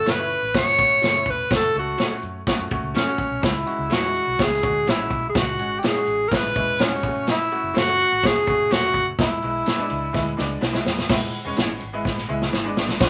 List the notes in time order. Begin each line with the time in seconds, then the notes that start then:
Already playing: C#4 F#4 A4
0.06 F#1 F#4 A4 C#5, snare, closed hi-hat
0.10 B4
0.18 A3 C#4 E4
0.30 closed hi-hat
0.43 A1
0.54 F#1 A3 C#4 F#4 C#5, kick, snare, closed hi-hat
0.68 snare
0.78 G#1 A3 C#4 F#4, kick, closed hi-hat
1.02 F#1 F#4 A4 C#5, snare, closed hi-hat
1.14 A3 C#4 E4
1.26 E1, kick, closed hi-hat
1.30 B4
1.50 F#1 A3 C#4 F#4, kick, snare, closed hi-hat
1.56 A4
1.74 C#2 A3 C#4 A4, closed hi-hat
1.79 F#4
1.98 F#4 A4 C#5, snare, closed hi-hat
2.11 A3 C#4 F#4, muted fingered electric bass stroke
2.23 F#2, closed hi-hat
2.47 A3 C#4 F#4, kick, snare, closed hi-hat
2.59 F#2
2.71 E2 A3 C#4 F#4, kick, closed hi-hat
2.83 C#2
2.94 F#1 C#4 F#4 A4 C#5, snare, closed hi-hat
3.06 A3 C#4 F#4
3.18 A1, kick, closed hi-hat
3.30 B1
3.42 C#2 G#3 C#4 E4, kick, snare, closed hi-hat
3.66 G#3 C#4 F#4, closed hi-hat
3.79 C#2
3.90 E2 E4 F#4 G#4 C#5, snare, closed hi-hat
4.03 G#3 C#4 E4
4.15 closed hi-hat
4.27 B1
4.38 C#2 G#3 C#4 E4, kick, snare, closed hi-hat
4.42 G#4
4.52 snare
4.62 D2 G#3 C#4 F#4, kick, closed hi-hat
4.87 A1 E4 G#4 C#5, snare, closed hi-hat
4.98 G#3 C#4 F#4
5.10 B1, kick, closed hi-hat
5.29 G#4
5.34 C#2 G#3 C#4 F#4, kick, snare, closed hi-hat
5.39 F#4
5.59 G#1 G#3 C#4 F#4, closed hi-hat
5.79 G4, closed hi-hat
5.83 E4 G#4 C#5, snare
5.95 G#3 C#4 F#4, muted fingered electric bass stroke
6.07 A1, closed hi-hat
6.28 G#1 G#3 C#4 E4 A#4, kick, closed hi-hat
6.32 B4, snare
6.45 snare
6.55 E1 G#3 C#4 E4, kick, closed hi-hat
6.79 C#4 E4 G#4 C#5, snare, closed hi-hat
6.91 G#3 C#4 F#4
7.02 F#1 G#3 C#4 F#4, kick, closed hi-hat
7.08 A3
7.27 snare, closed hi-hat
7.31 E4
7.51 A3 C#4 F#4, closed hi-hat
7.64 F#1
7.74 F#1 F#4 A4 C#5, snare, closed hi-hat
7.78 F#4
7.87 A3 C#4 F#4
7.99 closed hi-hat
8.12 A1
8.23 E1 A3 C#4 F#4 G#4, kick, snare, closed hi-hat
8.46 F#1 A3 C#4 F#4, kick, closed hi-hat
8.71 E1 F#4 A4 C#5, snare, closed hi-hat
8.83 A3 C#4 F#4
8.94 F#1, kick, closed hi-hat
9.19 E1 G#3 B3 E4, kick, snare, closed hi-hat
9.42 B1 G#3 B3 E4, closed hi-hat
9.66 B3 E4 G#4, snare, closed hi-hat
9.78 G#3 B3 D4, muted fingered electric bass stroke
9.90 C#2, closed hi-hat
10.13 D2 G#3 B3 E4, kick, snare
10.37 C#2 G#3 B3 D4, snare
10.61 B1 B3 E4 G#4, snare
10.73 G#3 B3 E4, snare
10.86 E2, snare
10.98 snare
11.09 E1 G#3 B3 E4, kick, snare, crash
11.33 closed hi-hat
11.45 E1 G#3 B3 C#4
11.57 G#1 B3 E4 G#4, snare, closed hi-hat
11.80 G#1, closed hi-hat
11.93 G#3 B3 E4
12.05 G#1, kick, snare
12.18 snare
12.29 C#2 G#3 B3 E4
12.42 snare
12.52 G#1 B3 E4 G#4, snare
12.64 G#3 B3 D4
12.77 A1, snare
12.89 snare
13.00 B1 F#3 B3 D4 F#4, kick, snare, crash